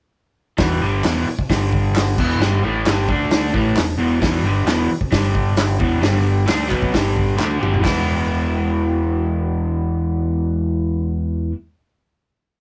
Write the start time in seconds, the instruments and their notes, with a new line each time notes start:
0.57 picked electric bass E1, overdriven electric guitar E2 B2 E3, kick, snare, open hi-hat
0.81 picked electric bass G1, overdriven electric guitar G2 D3 G3
1.03 picked electric bass E1, overdriven electric guitar E2 B2 E3, snare, clap, open hi-hat
1.27 muted picked electric bass stroke, muted overdriven electric guitar stroke
1.39 kick
1.49 picked electric bass G1, overdriven electric guitar G2 D3 G3, kick, snare, open hi-hat
1.73 kick
1.96 snare, clap, open hi-hat
2.17 picked electric bass E1, overdriven electric guitar E2 B2 E3, kick, crash
2.38 picked electric bass G1, overdriven electric guitar G2 D3 G3, snare
2.63 picked electric bass A1, overdriven electric guitar A2 E3 A3
2.85 picked electric bass G1, overdriven electric guitar G2 D3 G3, snare, clap, open hi-hat
3.09 picked electric bass D2, overdriven electric guitar D3 A3 D4, kick
3.31 snare, open hi-hat
3.53 picked electric bass A1, overdriven electric guitar A2 E3 A3, kick
3.76 picked electric bass E1, overdriven electric guitar E2 B2, snare, clap, open hi-hat
3.98 picked electric bass E1, overdriven electric guitar E2 B2 E3
4.20 picked electric bass E1, overdriven electric guitar E2 B2 E3, kick, snare, open hi-hat
4.43 picked electric bass G1, overdriven electric guitar G2 D3 G3
4.64 picked electric bass E1, overdriven electric guitar E2 B2 E3, snare, clap, open hi-hat
4.90 muted overdriven electric guitar stroke, muted picked electric bass stroke
5.01 kick
5.11 picked electric bass G1, overdriven electric guitar G2 D3 G3, kick, snare, open hi-hat
5.35 kick
5.57 snare, clap, open hi-hat
5.79 picked electric bass E1, overdriven electric guitar E2 B2 E3, kick
6.01 picked electric bass G1, overdriven electric guitar G2 D3 G3, snare, open hi-hat
6.46 picked electric bass D2, overdriven electric guitar D3 A3 D4, snare, clap, open hi-hat
6.68 picked electric bass B1, overdriven electric guitar B2 F#3 B3, kick, clap
6.82 kick
6.92 picked electric bass G1, overdriven electric guitar G2 D3 G3, kick, snare, open hi-hat
7.17 kick
7.37 picked electric bass D2, overdriven electric guitar D3 A3 D4, snare, clap
7.59 picked electric bass G1, overdriven electric guitar G2 D3 G3, mid tom
7.74 floor tom
7.80 overdriven electric guitar E3 G#3 B3
7.85 picked electric bass E1, overdriven electric guitar E4, kick, snare, clap, open hi-hat